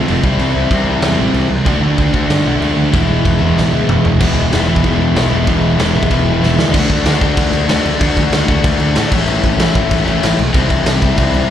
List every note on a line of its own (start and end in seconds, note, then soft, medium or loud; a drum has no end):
0.00 0.23 F3 medium
0.00 0.23 A3 medium
0.00 0.23 C4 medium
0.00 0.24 C4 medium
0.00 0.22 F4 medium
0.07 0.18 F1 medium
0.07 0.22 F2 medium
0.07 0.22 C3 medium
0.07 0.22 F3 loud
0.07 crash medium
0.23 0.34 C2 medium
0.23 0.69 C3 medium
0.23 0.39 C3 medium
0.23 0.70 E3 loud
0.23 0.38 G3 loud
0.23 0.71 G3 medium
0.23 0.38 C4 loud
0.23 0.71 C4 loud
0.23 0.71 E4 loud
0.23 kick loud
0.39 0.49 C2 loud
0.39 0.53 C3 medium
0.39 0.53 G3 loud
0.39 0.54 C4 medium
0.39 crash medium
0.54 0.65 C2 medium
0.54 0.69 C3 medium
0.54 0.68 G3 medium
0.54 0.68 C4 medium
0.70 0.81 C2 loud
0.70 1.49 C3 medium
0.70 0.85 C3 medium
0.70 1.49 E3 medium
0.70 0.85 G3 medium
0.70 1.50 G3 medium
0.70 0.86 C4 medium
0.70 1.50 C4 medium
0.70 1.50 E4 medium
0.70 kick medium
0.70 crash medium
0.86 0.97 C2 medium
0.86 1.01 C3 medium
0.86 1.01 G3 medium
0.86 1.01 C4 medium
1.02 1.13 E2 loud
1.02 1.16 C3 medium
1.02 1.16 G3 medium
1.02 1.17 C4 loud
1.02 snare loud
1.02 crash medium
1.17 1.28 A1 medium
1.17 1.34 C3 medium
1.17 1.33 G3 medium
1.17 1.33 C4 medium
1.34 1.44 C2 medium
1.34 1.49 C3 medium
1.34 1.49 G3 medium
1.34 1.50 C4 loud
1.34 crash medium
1.50 1.60 C2 medium
1.50 1.65 C3 medium
1.50 1.65 G3 loud
1.50 1.66 C4 loud
1.65 1.76 D2 medium
1.65 2.12 D3 medium
1.65 1.81 D3 medium
1.65 2.13 A3 medium
1.65 1.80 A3 loud
1.65 1.80 D4 loud
1.65 2.13 D4 loud
1.65 2.12 F#4 loud
1.65 kick loud
1.65 crash medium
1.81 1.92 D2 medium
1.81 1.96 D3 medium
1.81 1.97 A3 medium
1.81 1.97 D4 medium
1.98 2.08 D2 loud
1.98 2.12 D3 medium
1.98 2.12 A3 medium
1.98 2.11 D4 medium
1.98 kick medium
1.98 crash medium
2.12 2.24 D2 medium
2.12 2.27 D3 medium
2.12 2.27 A3 medium
2.12 2.93 A3 medium
2.12 2.27 D4 medium
2.12 2.93 D4 medium
2.12 2.92 F#4 medium
2.12 kick medium
2.17 2.92 D3 medium
2.28 2.40 G2 loud
2.28 2.43 D3 medium
2.28 2.43 A3 loud
2.28 2.43 D4 loud
2.28 snare loud
2.28 crash medium
2.44 2.55 B1 medium
2.44 2.58 D3 medium
2.44 2.59 A3 medium
2.44 2.60 D4 loud
2.60 2.71 D2 medium
2.60 2.76 D3 medium
2.60 2.76 A3 medium
2.60 2.75 D4 medium
2.60 crash medium
2.76 2.87 D2 medium
2.76 2.92 D3 medium
2.76 2.92 A3 medium
2.76 2.92 D4 loud
2.92 3.04 E1 loud
2.92 3.07 E2 medium
2.92 3.06 B2 medium
2.92 3.39 E3 medium
2.92 3.06 E3 medium
2.92 3.40 G#3 loud
2.92 3.41 B3 loud
2.92 3.39 E4 loud
2.92 kick loud
2.92 crash medium
3.07 3.19 E1 medium
3.07 3.23 E2 medium
3.07 3.24 B2 medium
3.07 3.23 E3 medium
3.24 3.35 E1 loud
3.24 3.40 E2 medium
3.24 3.39 B2 medium
3.24 3.39 E3 medium
3.24 kick medium
3.24 crash medium
3.40 3.51 E1 medium
3.40 3.54 E2 medium
3.40 3.55 B2 medium
3.40 3.55 E3 medium
3.40 4.19 E3 medium
3.40 4.19 G#3 medium
3.40 4.20 B3 medium
3.40 4.19 E4 medium
3.55 3.67 A1 loud
3.55 3.72 E2 medium
3.55 3.72 B2 loud
3.55 3.71 E3 loud
3.55 snare medium
3.72 3.82 D2 medium
3.72 3.86 E2 medium
3.72 3.86 B2 medium
3.72 3.87 E3 medium
3.87 3.99 E1 medium
3.87 4.03 E2 medium
3.87 4.03 B2 medium
3.87 4.03 E3 medium
3.87 mid tom medium
4.04 4.14 E1 medium
4.04 4.18 E2 medium
4.04 4.19 B2 medium
4.04 4.19 E3 medium
4.04 floor tom medium
4.19 4.35 E1 loud
4.19 5.46 E2 medium
4.19 5.46 B2 medium
4.19 4.52 E3 medium
4.19 5.47 E3 medium
4.19 4.52 G#3 loud
4.19 4.53 B3 loud
4.19 4.53 E4 loud
4.19 kick loud
4.19 crash loud
4.19 crash medium
4.35 4.50 E1 loud
4.52 4.66 E1 loud
4.52 4.68 E2 medium
4.52 4.67 B2 medium
4.52 4.70 E3 medium
4.52 4.68 E3 medium
4.52 4.69 G#3 loud
4.52 4.69 B3 loud
4.52 4.68 E4 loud
4.52 snare loud
4.52 crash medium
4.67 4.82 E2 medium
4.67 4.83 B2 medium
4.67 4.83 E3 medium
4.67 4.82 E3 medium
4.67 4.83 G#3 medium
4.67 4.84 B3 medium
4.67 4.84 E4 loud
4.76 kick medium
4.83 4.99 E1 loud
4.83 5.14 E2 loud
4.83 5.15 B2 loud
4.83 5.14 E3 loud
4.83 5.15 E3 loud
4.83 5.15 G#3 loud
4.83 5.15 B3 loud
4.83 5.16 E4 loud
4.83 kick loud
4.83 crash medium
5.00 5.14 E1 medium
5.15 5.30 B1 medium
5.15 5.31 E2 medium
5.15 5.30 B2 medium
5.15 5.32 E3 medium
5.15 5.30 E3 medium
5.15 5.31 G#3 medium
5.15 5.31 B3 medium
5.15 5.30 E4 loud
5.15 snare loud
5.15 crash medium
5.31 5.46 E1 medium
5.31 5.45 E2 medium
5.31 5.46 B2 medium
5.31 5.46 E3 medium
5.31 5.47 G#3 medium
5.31 5.47 B3 medium
5.31 5.48 E4 medium
5.47 5.76 E1 loud
5.47 6.73 E2 medium
5.47 6.73 B2 medium
5.47 5.77 E3 loud
5.47 6.74 E3 loud
5.47 5.78 G#3 loud
5.47 5.78 B3 loud
5.47 5.79 E4 loud
5.47 kick loud
5.47 crash medium
5.78 5.93 E1 medium
5.78 5.95 E2 medium
5.78 5.94 B2 loud
5.78 5.95 E3 medium
5.78 5.93 E3 medium
5.78 5.94 G#3 loud
5.78 5.94 B3 medium
5.78 5.93 E4 loud
5.78 snare loud
5.78 crash medium
5.94 6.09 A1 medium
5.94 6.10 E2 medium
5.94 6.10 B2 medium
5.94 6.11 E3 medium
5.94 6.09 E3 medium
5.94 6.10 G#3 medium
5.94 6.10 B3 loud
5.94 6.10 E4 loud
6.03 kick medium
6.10 6.40 E1 loud
6.10 6.41 E2 loud
6.10 6.41 B2 loud
6.10 6.40 E3 medium
6.10 6.42 E3 loud
6.10 6.41 G#3 loud
6.10 6.41 B3 loud
6.10 6.42 E4 loud
6.10 kick loud
6.10 crash medium
6.41 6.57 E1 medium
6.41 6.59 E2 medium
6.41 6.58 B2 medium
6.41 6.57 E3 medium
6.41 6.57 E3 loud
6.41 6.57 G#3 medium
6.41 6.56 B3 medium
6.41 6.56 E4 loud
6.41 snare medium
6.57 6.74 D2 medium
6.57 6.74 E2 medium
6.57 6.74 B2 medium
6.57 6.73 E3 medium
6.57 6.72 E3 medium
6.57 6.73 G#3 medium
6.57 6.73 B3 medium
6.57 6.72 E4 medium
6.57 snare loud
6.72 6.84 D2 loud
6.72 7.20 D3 loud
6.72 7.05 D3 medium
6.72 7.22 A3 loud
6.72 7.06 A3 loud
6.72 7.06 D4 loud
6.72 7.20 D4 loud
6.72 7.18 F#4 loud
6.72 kick loud
6.72 crash loud
6.72 crash medium
6.90 7.00 D2 loud
6.90 kick medium
6.90 crash medium
7.05 7.15 D2 medium
7.05 7.20 D3 medium
7.05 7.21 A3 medium
7.05 7.20 D4 loud
7.05 snare loud
7.05 crash medium
7.20 7.31 D2 medium
7.20 7.36 D3 medium
7.20 7.66 D3 medium
7.20 7.37 A3 medium
7.20 7.69 A3 medium
7.20 7.37 D4 medium
7.20 7.68 D4 medium
7.20 7.67 F#4 medium
7.20 kick medium
7.20 crash medium
7.37 7.47 D2 loud
7.37 7.68 D3 loud
7.37 7.70 A3 loud
7.37 7.69 D4 loud
7.37 kick loud
7.37 crash medium
7.53 7.63 D2 medium
7.53 crash medium
7.67 7.79 D2 medium
7.67 7.98 D3 medium
7.67 7.84 D3 medium
7.67 8.00 A3 medium
7.67 7.85 A3 loud
7.67 8.00 D4 medium
7.67 7.84 D4 medium
7.67 8.01 F#4 loud
7.67 snare loud
7.67 crash medium
7.85 7.95 D2 medium
7.85 7.99 D3 medium
7.85 8.01 A3 medium
7.85 8.00 D4 loud
7.85 crash medium
7.99 8.11 D2 loud
7.99 8.47 D3 medium
7.99 8.31 D3 loud
7.99 8.49 A3 loud
7.99 8.32 A3 loud
7.99 8.32 D4 loud
7.99 8.47 D4 loud
7.99 8.46 F#4 loud
7.99 kick loud
7.99 crash loud
8.17 8.26 D2 medium
8.17 kick medium
8.17 crash medium
8.32 8.42 D2 loud
8.32 8.48 D3 medium
8.32 8.49 A3 medium
8.32 8.47 D4 loud
8.32 snare loud
8.32 crash medium
8.47 8.58 D2 medium
8.47 8.63 D3 medium
8.47 8.94 D3 medium
8.47 8.63 A3 medium
8.47 8.95 A3 medium
8.47 8.64 D4 medium
8.47 8.95 D4 medium
8.47 8.94 F#4 medium
8.47 kick loud
8.47 crash medium
8.64 8.74 D2 loud
8.64 8.94 D3 loud
8.64 8.94 A3 loud
8.64 8.95 D4 loud
8.64 kick loud
8.64 crash medium
8.80 8.90 D2 medium
8.80 crash medium
8.95 9.06 A2 loud
8.95 9.10 D3 medium
8.95 9.10 A3 medium
8.95 9.11 A3 medium
8.95 9.11 D4 loud
8.95 9.12 D4 medium
8.95 9.12 F#4 medium
8.95 snare loud
8.95 crash medium
9.11 9.21 A1 medium
9.11 9.26 A2 loud
9.11 9.57 A2 loud
9.11 9.27 E3 loud
9.11 9.59 E3 loud
9.11 9.26 A3 loud
9.11 9.59 A3 loud
9.11 9.59 C#4 loud
9.11 9.61 E4 medium
9.11 kick loud
9.11 crash loud
9.27 9.37 A1 loud
9.27 9.59 A2 medium
9.27 9.59 E3 loud
9.27 9.58 A3 loud
9.27 crash medium
9.43 9.53 A1 loud
9.43 kick medium
9.43 crash medium
9.58 9.69 A1 medium
9.58 10.05 A2 medium
9.58 9.73 A2 medium
9.58 10.06 E3 medium
9.58 9.75 E3 medium
9.58 9.74 A3 medium
9.58 10.06 A3 loud
9.58 10.06 C#4 loud
9.58 10.04 E4 medium
9.58 snare loud
9.58 crash medium
9.75 9.85 A1 medium
9.75 9.90 A2 medium
9.75 9.90 E3 medium
9.75 9.89 A3 loud
9.75 kick medium
9.75 crash medium
9.91 10.01 A1 loud
9.91 10.23 A2 medium
9.91 10.22 E3 loud
9.91 10.22 A3 loud
9.91 kick loud
9.91 crash medium
10.05 10.17 A1 medium
10.05 10.38 E3 medium
10.05 10.38 A3 medium
10.05 10.38 C#4 medium
10.05 10.37 E4 medium
10.05 crash medium
10.09 10.39 A2 medium
10.23 10.33 A1 medium
10.23 10.37 A2 medium
10.23 10.38 E3 medium
10.23 10.38 A3 medium
10.23 snare loud
10.23 crash medium
10.38 10.49 B1 medium
10.38 10.53 A2 medium
10.38 10.54 E3 medium
10.38 10.54 A3 loud
10.38 crash medium
10.53 10.64 C2 loud
10.53 11.01 C3 loud
10.53 10.85 C3 loud
10.53 11.01 E3 loud
10.53 10.86 G3 loud
10.53 11.02 G3 loud
10.53 10.86 C4 loud
10.53 11.02 C4 loud
10.53 11.01 E4 loud
10.53 kick loud
10.53 crash medium
10.70 10.80 C2 medium
10.70 kick medium
10.70 crash medium
10.86 10.97 C2 loud
10.86 11.02 C3 medium
10.86 11.01 G3 medium
10.86 11.00 C4 medium
10.86 snare loud
10.86 crash medium
11.02 11.12 C2 medium
11.02 11.17 C3 medium
11.02 11.47 C3 medium
11.02 11.48 E3 medium
11.02 11.17 G3 medium
11.02 11.50 G3 medium
11.02 11.17 C4 loud
11.02 11.49 C4 medium
11.02 11.49 E4 medium
11.02 kick medium
11.02 crash medium
11.18 11.28 C2 loud
11.18 11.49 C3 loud
11.18 11.49 G3 loud
11.18 11.49 C4 loud
11.18 kick loud
11.18 crash medium
11.34 11.44 C2 medium
11.34 crash medium